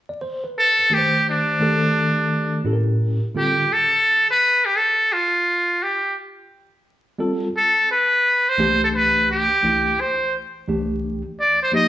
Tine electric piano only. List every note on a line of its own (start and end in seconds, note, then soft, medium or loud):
0.09 0.21 D5 medium
0.21 0.43 C5 medium
0.44 0.77 B4 medium
0.90 1.59 D#3 medium
0.90 1.59 A3 medium
0.90 1.59 D4 medium
0.90 1.60 G4 medium
0.90 1.00 A#4 soft
0.98 1.94 C5 medium
1.60 2.60 D#3 medium
1.60 2.60 A3 medium
1.60 2.61 D4 medium
1.60 2.61 G4 medium
1.60 2.61 A4 medium
2.64 3.18 A2 medium
2.64 3.18 C#4 medium
2.64 3.19 E4 medium
2.64 3.19 G4 medium
2.64 2.75 A4 medium
2.73 3.23 A#4 medium
3.35 3.63 D3 medium
3.35 3.63 G3 medium
3.35 3.63 C4 medium
3.35 3.63 F4 medium
3.35 3.64 A4 medium
7.18 7.46 G3 medium
7.18 7.47 C4 medium
7.18 7.47 F4 medium
7.18 7.47 A4 medium
8.58 9.46 C2 medium
8.58 9.46 E3 medium
8.58 9.47 A3 medium
8.58 9.47 D4 medium
8.58 9.47 G4 medium
9.63 9.91 C2 medium
9.63 9.91 E3 medium
9.63 9.91 A3 medium
9.63 9.91 D4 medium
9.63 9.92 E4 medium
10.67 11.21 C2 medium
10.67 11.21 E3 medium
10.67 11.21 A3 medium
10.67 11.22 D4 medium
10.67 11.22 G4 medium
11.72 11.88 F3 medium
11.72 11.88 A#3 medium
11.72 11.88 D#4 medium
11.72 11.88 G4 medium